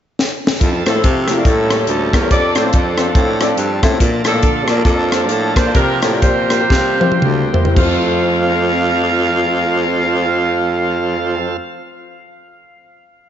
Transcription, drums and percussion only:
0.19 snare medium
0.47 snare medium
0.61 kick medium
0.61 closed hi-hat medium
0.86 cross-stick medium
0.86 closed hi-hat medium
1.04 kick medium
1.04 closed hi-hat medium
1.28 cross-stick medium
1.28 closed hi-hat medium
1.45 kick medium
1.45 closed hi-hat medium
1.70 cross-stick loud
1.70 closed hi-hat medium
1.87 closed hi-hat medium
2.13 kick medium
2.13 cross-stick loud
2.13 closed hi-hat medium
2.31 kick medium
2.31 closed hi-hat medium
2.55 cross-stick medium
2.55 closed hi-hat soft
2.73 kick medium
2.73 closed hi-hat medium
2.98 cross-stick medium
2.98 closed hi-hat soft
3.15 kick loud
3.15 closed hi-hat medium
3.41 cross-stick medium
3.41 closed hi-hat medium
3.57 closed hi-hat medium
3.83 kick medium
3.83 cross-stick medium
3.83 closed hi-hat medium
4.00 kick medium
4.00 closed hi-hat medium
4.24 cross-stick medium
4.24 closed hi-hat medium
4.43 kick medium
4.43 closed hi-hat medium
4.68 cross-stick medium
4.68 closed hi-hat medium
4.85 kick medium
4.85 closed hi-hat medium
5.12 cross-stick loud
5.12 closed hi-hat medium
5.29 closed hi-hat medium
5.56 kick medium
5.56 cross-stick medium
5.56 closed hi-hat medium
5.75 kick medium
5.75 closed hi-hat medium
6.02 cross-stick medium
6.02 closed hi-hat medium
6.22 kick medium
6.22 closed hi-hat medium
6.50 cross-stick medium
6.50 closed hi-hat medium
6.70 kick medium
6.70 snare soft
7.01 high tom medium
7.12 high tom medium
7.22 mid tom medium
7.54 floor tom medium
7.65 floor tom medium
7.76 kick medium
7.76 crash medium

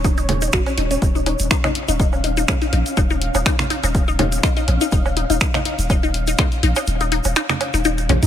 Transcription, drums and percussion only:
0.04 kick loud
0.04 closed hi-hat soft
0.04 shaker medium
0.18 closed hi-hat soft
0.18 shaker soft
0.29 open hi-hat loud
0.29 low conga medium
0.29 low woodblock soft
0.42 closed hi-hat soft
0.42 shaker medium
0.52 finger snap loud
0.52 kick loud
0.52 closed hi-hat medium
0.52 shaker medium
0.66 open hi-hat soft
0.66 low woodblock medium
0.66 shaker soft
0.78 open hi-hat loud
0.91 closed hi-hat soft
0.91 shaker medium
1.02 kick loud
1.02 closed hi-hat medium
1.02 shaker medium
1.16 shaker soft
1.26 open hi-hat medium
1.26 low woodblock soft
1.39 closed hi-hat soft
1.39 shaker medium
1.51 finger snap loud
1.51 kick loud
1.51 closed hi-hat medium
1.51 shaker medium
1.64 finger snap medium
1.64 low conga medium
1.64 low woodblock medium
1.64 shaker soft
1.75 open hi-hat loud
1.88 closed hi-hat soft
1.88 shaker medium
2.00 kick loud
2.00 closed hi-hat soft
2.00 shaker medium
2.13 low woodblock soft
2.13 shaker soft
2.24 open hi-hat medium
2.37 closed hi-hat soft
2.37 shaker medium
2.48 finger snap medium
2.48 kick loud
2.48 closed hi-hat medium
2.48 low conga medium
2.48 low woodblock medium
2.48 shaker medium
2.62 open hi-hat soft
2.62 shaker soft
2.73 open hi-hat medium
2.86 closed hi-hat soft
2.86 shaker medium
2.97 kick loud
2.97 closed hi-hat medium
2.97 low woodblock soft
2.97 shaker medium
3.10 shaker soft
3.22 open hi-hat medium
3.35 closed hi-hat soft
3.35 low woodblock medium
3.35 shaker medium
3.46 finger snap medium
3.46 kick loud
3.46 closed hi-hat medium
3.46 shaker medium
3.59 finger snap medium
3.59 low conga medium
3.59 shaker soft
3.70 open hi-hat medium
3.83 closed hi-hat soft
3.83 low woodblock soft
3.83 shaker medium
3.95 kick loud
3.95 closed hi-hat medium
3.95 shaker medium
4.08 shaker soft
4.19 open hi-hat loud
4.19 low conga medium
4.19 low woodblock medium
4.32 closed hi-hat soft
4.32 shaker medium
4.43 finger snap medium
4.43 kick loud
4.43 closed hi-hat medium
4.43 shaker medium
4.57 open hi-hat soft
4.57 shaker soft
4.68 open hi-hat medium
4.68 low woodblock soft
4.81 closed hi-hat soft
4.81 shaker medium
4.92 kick loud
4.92 closed hi-hat medium
4.92 shaker medium
5.05 low woodblock medium
5.05 shaker soft
5.17 open hi-hat medium
5.30 closed hi-hat soft
5.30 shaker medium
5.41 finger snap medium
5.41 kick loud
5.41 closed hi-hat medium
5.41 shaker medium
5.54 finger snap medium
5.54 low conga medium
5.54 low woodblock soft
5.54 shaker soft
5.65 open hi-hat medium
5.79 closed hi-hat soft
5.79 shaker medium
5.90 kick loud
5.90 closed hi-hat medium
5.90 low woodblock medium
5.90 shaker medium
6.03 shaker soft
6.14 open hi-hat medium
6.27 closed hi-hat soft
6.27 shaker medium
6.38 finger snap loud
6.38 kick loud
6.38 closed hi-hat medium
6.38 low conga medium
6.38 low woodblock soft
6.38 shaker medium
6.52 open hi-hat soft
6.52 shaker soft
6.63 open hi-hat medium
6.76 closed hi-hat soft
6.76 low woodblock medium
6.76 shaker medium
6.87 closed hi-hat medium
6.87 shaker medium
7.01 closed hi-hat soft
7.01 shaker soft
7.12 open hi-hat medium
7.24 closed hi-hat soft
7.24 low woodblock soft
7.24 shaker medium
7.36 finger snap medium
7.36 closed hi-hat medium
7.36 shaker medium
7.49 finger snap medium
7.49 closed hi-hat soft
7.49 low conga medium
7.49 shaker soft
7.61 open hi-hat medium
7.61 low woodblock medium
7.74 open hi-hat soft
7.74 shaker medium
7.85 closed hi-hat medium
7.85 shaker medium
7.98 closed hi-hat soft
7.98 shaker soft
8.09 open hi-hat medium
8.09 low conga loud
8.09 low woodblock soft
8.23 closed hi-hat soft
8.23 shaker medium

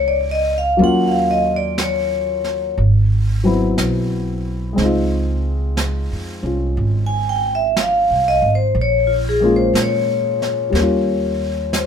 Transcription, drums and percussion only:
0.80 brush sweep soft
1.78 brush sweep soft
1.78 snare soft
1.78 hi-hat pedal soft
2.44 snare soft
2.77 brush sweep soft
3.78 brush sweep soft
3.78 snare soft
3.78 hi-hat pedal soft
4.78 brush sweep soft
4.78 snare soft
5.77 brush sweep soft
5.77 snare soft
5.77 hi-hat pedal medium
6.77 brush sweep soft
7.77 brush sweep soft
7.77 snare soft
7.77 hi-hat pedal soft
8.76 brush sweep soft
9.75 brush sweep soft
9.75 snare soft
9.75 hi-hat pedal soft
10.42 snare soft
10.75 brush sweep soft
10.75 snare soft
11.73 brush sweep soft
11.73 snare soft
11.73 hi-hat pedal medium

